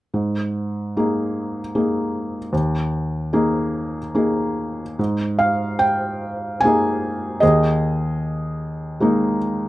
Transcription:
0.14 2.49 G#2 soft
0.97 1.60 A#3 soft
0.97 1.60 D#4 soft
0.97 1.60 G#4 soft
1.75 2.38 A#3 soft
1.75 2.38 D#4 soft
1.75 2.37 G#4 soft
2.53 4.95 D#2 soft
3.33 3.98 A#3 soft
3.33 3.98 D#4 soft
3.33 3.98 G#4 soft
4.15 4.82 A#3 soft
4.15 4.83 D#4 soft
4.15 4.83 G#4 soft
4.99 7.38 G#2 soft
5.39 5.82 F5 medium
5.79 6.63 G5 medium
6.61 7.41 A#3 soft
6.61 7.37 G#5 medium
6.65 7.41 D#4 soft
6.65 7.40 G#4 soft
7.40 9.69 D#2 soft
7.40 9.37 G#4 soft
7.40 9.36 D#5 medium
9.00 9.69 G#3 soft
9.00 9.69 A#3 soft
9.00 9.69 D#4 soft

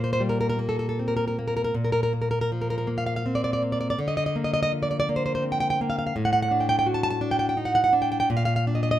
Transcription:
0.00 1.71 A#2 medium
0.00 0.58 A#3 medium
0.00 0.12 C5 loud
0.13 0.21 C5 loud
0.20 1.36 G3 medium
0.29 0.39 A#4 medium
0.41 0.48 A#4 medium
0.49 0.59 A#4 loud
0.59 1.37 A#3 medium
0.69 0.78 A4 medium
0.79 0.88 A4 medium
0.89 0.98 A4 medium
0.99 1.75 C4 medium
1.08 1.15 A#4 medium
1.17 1.26 A#4 medium
1.28 1.37 A#4 medium
1.39 1.75 A#3 medium
1.48 1.55 A#4 medium
1.57 1.63 A#4 medium
1.64 1.74 A#4 medium
1.74 3.94 A#2 medium
1.85 1.91 A#4 medium
1.92 2.02 A#4 medium
2.03 2.12 A#4 medium
2.13 2.86 A#3 medium
2.22 2.30 A#4 medium
2.31 2.40 A#4 medium
2.41 2.50 A#4 medium
2.52 3.25 F3 medium
2.62 2.69 A#4 medium
2.70 2.77 A#4 loud
2.78 2.87 A#4 medium
2.87 3.61 A#3 medium
2.98 3.05 F5 loud
3.06 3.15 F5 medium
3.16 3.25 F5 medium
3.26 3.98 C4 medium
3.35 3.43 D5 medium
3.44 3.52 D5 medium
3.53 3.62 D5 medium
3.63 3.99 A#3 medium
3.72 3.79 D5 medium
3.81 3.89 D5 loud
3.90 3.99 D5 loud
3.99 6.12 D3 loud
4.08 4.16 D#5 loud
4.17 4.25 D#5 loud
4.26 4.35 D#5 loud
4.36 5.08 A#3 medium
4.44 4.52 D#5 medium
4.54 4.61 D#5 loud
4.63 4.71 D#5 loud
4.72 5.80 F3 medium
4.83 4.90 D5 medium
4.91 4.98 D5 medium
5.00 5.08 D5 loud
5.09 5.80 A#3 medium
5.16 5.25 C5 loud
5.26 5.34 C5 medium
5.35 5.44 C5 medium
5.42 6.15 C4 medium
5.52 5.59 G5 medium
5.60 5.69 G5 loud
5.70 5.79 G5 loud
5.81 6.15 A#3 medium
5.90 5.97 F5 medium
5.99 6.05 F5 medium
6.07 6.15 F5 medium
6.16 8.24 A2 loud
6.25 6.32 F#5 loud
6.33 6.41 F#5 loud
6.42 6.51 F#5 loud
6.51 7.20 D4 medium
6.60 6.68 G5 medium
6.69 6.77 G5 loud
6.79 6.86 G5 loud
6.87 7.93 F#4 medium
6.94 7.02 A5 loud
7.03 7.09 A5 loud
7.10 7.20 A5 loud
7.21 7.57 D4 medium
7.31 7.38 G5 loud
7.39 7.48 G5 medium
7.49 7.57 G5 medium
7.57 7.92 D#4 medium
7.65 7.74 F#5 loud
7.75 7.83 F#5 loud
7.84 7.93 F#5 loud
7.93 8.28 D4 medium
8.02 8.10 G5 medium
8.12 8.19 G5 loud
8.20 8.28 G5 loud
8.30 8.99 A#2 loud
8.37 8.44 F5 loud
8.45 8.55 F5 loud
8.56 8.64 F5 loud
8.67 8.99 D4 medium
8.75 8.82 D#5 medium
8.83 8.90 D#5 loud
8.91 8.99 D#5 loud

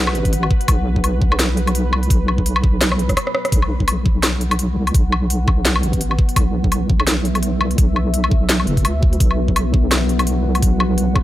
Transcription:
0.00 0.16 B1 loud
0.00 3.48 F#3 medium
0.00 3.48 B3 medium
0.00 3.48 B4 medium
0.00 3.53 B4 medium
0.00 0.67 F#5 medium
0.07 snare soft
0.07 low woodblock medium
0.15 0.24 A1 loud
0.15 closed hi-hat soft
0.25 0.50 A1 medium
0.25 kick medium
0.25 closed hi-hat soft
0.33 closed hi-hat medium
0.43 low woodblock medium
0.51 kick loud
0.61 closed hi-hat soft
0.68 1.94 B1 loud
0.68 3.52 B5 loud
0.68 kick loud
0.68 closed hi-hat medium
0.68 low woodblock medium
0.96 kick medium
1.04 closed hi-hat medium
1.04 low woodblock medium
1.22 kick loud
1.32 low woodblock medium
1.39 snare loud
1.39 closed hi-hat medium
1.57 closed hi-hat soft
1.67 closed hi-hat soft
1.67 low woodblock medium
1.75 closed hi-hat medium
1.92 2.09 C2 loud
1.92 low woodblock medium
2.03 closed hi-hat soft
2.10 3.11 B1 loud
2.10 kick loud
2.10 closed hi-hat medium
2.28 low woodblock medium
2.38 kick medium
2.46 closed hi-hat medium
2.56 low woodblock medium
2.64 kick loud
2.81 cross-stick medium
2.81 snare loud
2.81 closed hi-hat medium
2.92 cross-stick medium
2.92 low woodblock medium
2.99 closed hi-hat soft
3.09 3.17 C2 loud
3.09 kick medium
3.09 cross-stick medium
3.09 closed hi-hat soft
3.17 cross-stick medium
3.17 closed hi-hat medium
3.17 low woodblock medium
3.27 cross-stick medium
3.35 cross-stick loud
3.45 cross-stick medium
3.45 closed hi-hat soft
3.52 4.78 B1 loud
3.52 11.23 F#3 medium
3.52 11.23 B3 medium
3.52 11.23 B4 medium
3.52 6.35 F#5 medium
3.52 kick loud
3.52 closed hi-hat medium
3.62 low woodblock medium
3.80 kick medium
3.88 closed hi-hat medium
3.88 low woodblock medium
4.06 kick loud
4.23 snare loud
4.23 closed hi-hat medium
4.23 low woodblock medium
4.41 closed hi-hat soft
4.51 closed hi-hat soft
4.51 low woodblock medium
4.59 closed hi-hat medium
4.76 4.93 C2 loud
4.87 closed hi-hat soft
4.87 low woodblock medium
4.94 5.85 B1 loud
4.94 kick loud
4.94 closed hi-hat medium
5.12 low woodblock medium
5.30 closed hi-hat medium
5.48 kick loud
5.48 low woodblock medium
5.65 snare loud
5.65 closed hi-hat medium
5.76 low woodblock medium
5.83 5.92 A1 loud
5.83 closed hi-hat soft
5.93 6.18 A1 medium
5.93 kick medium
5.93 closed hi-hat soft
6.01 closed hi-hat medium
6.11 low woodblock medium
6.19 kick loud
6.29 closed hi-hat soft
6.36 7.62 B1 loud
6.36 9.20 E5 medium
6.36 kick loud
6.36 closed hi-hat medium
6.36 low woodblock medium
6.64 kick medium
6.72 closed hi-hat medium
6.72 low woodblock medium
6.90 kick loud
7.00 low woodblock medium
7.07 snare loud
7.07 closed hi-hat medium
7.25 closed hi-hat soft
7.35 closed hi-hat soft
7.35 low woodblock medium
7.43 closed hi-hat medium
7.60 7.77 C2 loud
7.60 low woodblock medium
7.71 closed hi-hat soft
7.78 8.66 B1 loud
7.78 kick loud
7.78 closed hi-hat medium
7.96 low woodblock medium
8.14 closed hi-hat medium
8.24 low woodblock medium
8.31 kick loud
8.49 snare loud
8.49 closed hi-hat medium
8.60 low woodblock medium
8.67 8.86 F#1 loud
8.67 closed hi-hat soft
8.77 kick medium
8.77 closed hi-hat soft
8.85 9.19 D2 loud
8.85 closed hi-hat medium
8.85 low woodblock medium
9.03 kick loud
9.13 closed hi-hat soft
9.20 10.46 B1 loud
9.20 11.23 F#5 loud
9.20 kick loud
9.20 closed hi-hat medium
9.31 low woodblock soft
9.48 kick medium
9.56 closed hi-hat medium
9.56 low woodblock medium
9.74 kick loud
9.91 snare loud
9.91 closed hi-hat medium
9.91 low woodblock medium
10.09 closed hi-hat soft
10.19 closed hi-hat soft
10.19 low woodblock medium
10.27 closed hi-hat medium
10.44 10.61 C2 loud
10.55 closed hi-hat soft
10.55 low woodblock soft
10.62 11.23 B1 loud
10.62 kick loud
10.62 closed hi-hat medium
10.80 low woodblock medium
10.98 closed hi-hat medium
11.15 kick loud
11.15 low woodblock medium

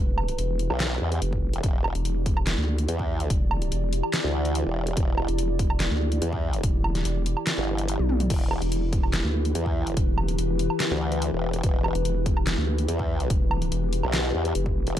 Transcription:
0.00 0.37 E1 loud
0.00 14.99 E3 medium
0.00 14.99 E4 medium
0.00 14.99 G4 medium
0.00 1.62 B4 loud
0.18 low woodblock medium
0.28 closed hi-hat medium
0.38 0.68 E1 loud
0.38 closed hi-hat medium
0.59 closed hi-hat medium
0.70 0.99 B1 medium
0.70 low woodblock medium
0.80 snare loud
0.80 clap medium
0.80 closed hi-hat medium
1.01 1.20 E2 loud
1.12 closed hi-hat medium
1.22 1.52 F1 medium
1.22 closed hi-hat medium
1.33 kick medium
1.53 1.62 E1 loud
1.53 closed hi-hat soft
1.63 1.93 E1 loud
1.63 8.28 D5 loud
1.63 kick loud
1.63 closed hi-hat medium
1.84 low woodblock medium
1.95 2.56 E1 loud
1.95 closed hi-hat medium
2.05 closed hi-hat medium
2.26 kick loud
2.26 open hi-hat medium
2.37 low woodblock medium
2.47 snare loud
2.47 clap medium
2.47 closed hi-hat medium
2.58 2.87 D2 loud
2.78 closed hi-hat medium
2.88 3.29 E2 loud
2.88 closed hi-hat medium
2.99 kick medium
3.20 closed hi-hat soft
3.30 3.70 E1 loud
3.30 kick loud
3.30 closed hi-hat medium
3.51 low woodblock medium
3.62 closed hi-hat medium
3.72 4.02 E1 loud
3.72 closed hi-hat medium
3.93 open hi-hat loud
4.03 low woodblock medium
4.13 snare loud
4.13 clap medium
4.13 closed hi-hat medium
4.24 4.64 D2 loud
4.45 closed hi-hat medium
4.55 closed hi-hat medium
4.66 4.95 E1 loud
4.87 closed hi-hat medium
4.97 5.27 E1 loud
4.97 kick loud
4.97 closed hi-hat medium
5.18 low woodblock medium
5.28 5.89 E1 loud
5.28 closed hi-hat medium
5.38 closed hi-hat medium
5.59 kick loud
5.59 open hi-hat loud
5.70 low woodblock medium
5.80 snare loud
5.80 clap medium
5.80 closed hi-hat medium
5.91 6.20 D2 medium
6.12 closed hi-hat medium
6.22 6.62 E2 loud
6.22 closed hi-hat medium
6.33 kick medium
6.53 closed hi-hat medium
6.63 7.04 E1 loud
6.63 kick loud
6.63 closed hi-hat medium
6.84 low woodblock medium
6.95 snare soft
6.95 closed hi-hat medium
7.05 7.35 E1 loud
7.05 closed hi-hat medium
7.26 open hi-hat loud
7.37 low woodblock medium
7.47 snare loud
7.47 clap medium
7.47 closed hi-hat medium
7.58 7.98 G1 loud
7.78 closed hi-hat medium
7.88 closed hi-hat medium
7.99 8.29 B1 loud
7.99 high tom medium
8.09 mid tom medium
8.20 closed hi-hat medium
8.20 mid tom medium
8.30 8.60 E1 loud
8.30 14.95 B4 loud
8.30 kick loud
8.30 closed hi-hat medium
8.30 crash medium
8.51 low woodblock medium
8.62 9.23 E1 loud
8.62 closed hi-hat medium
8.72 closed hi-hat medium
8.93 kick loud
8.93 open hi-hat medium
9.03 low woodblock medium
9.13 snare loud
9.13 clap medium
9.13 closed hi-hat medium
9.24 9.54 D2 medium
9.45 closed hi-hat medium
9.55 9.95 E2 medium
9.55 closed hi-hat medium
9.66 kick medium
9.87 closed hi-hat medium
9.97 10.37 E1 loud
9.97 kick loud
9.97 closed hi-hat medium
10.18 low woodblock medium
10.28 closed hi-hat medium
10.38 10.68 E1 loud
10.38 closed hi-hat medium
10.59 open hi-hat medium
10.70 low woodblock medium
10.80 snare loud
10.80 clap medium
10.80 closed hi-hat medium
10.91 11.31 D2 loud
11.12 closed hi-hat medium
11.22 closed hi-hat medium
11.33 11.62 E1 loud
11.53 closed hi-hat medium
11.63 11.93 E1 loud
11.63 kick loud
11.63 closed hi-hat medium
11.84 low woodblock medium
11.95 12.56 E1 loud
11.95 closed hi-hat medium
12.05 closed hi-hat medium
12.26 kick loud
12.26 open hi-hat medium
12.37 low woodblock medium
12.47 snare loud
12.47 clap medium
12.47 closed hi-hat medium
12.58 12.87 D2 loud
12.78 closed hi-hat medium
12.88 13.29 E2 loud
12.88 closed hi-hat medium
12.99 kick medium
13.20 closed hi-hat medium
13.30 13.70 E1 loud
13.30 kick loud
13.30 closed hi-hat medium
13.51 low woodblock medium
13.62 closed hi-hat soft
13.72 14.02 E1 loud
13.72 closed hi-hat medium
13.93 open hi-hat medium
14.03 14.33 B1 medium
14.03 low woodblock medium
14.13 snare loud
14.13 clap medium
14.13 closed hi-hat medium
14.34 14.54 E2 loud
14.45 closed hi-hat medium
14.55 14.85 F1 medium
14.55 closed hi-hat medium
14.66 kick medium
14.87 14.95 E1 loud
14.87 closed hi-hat medium

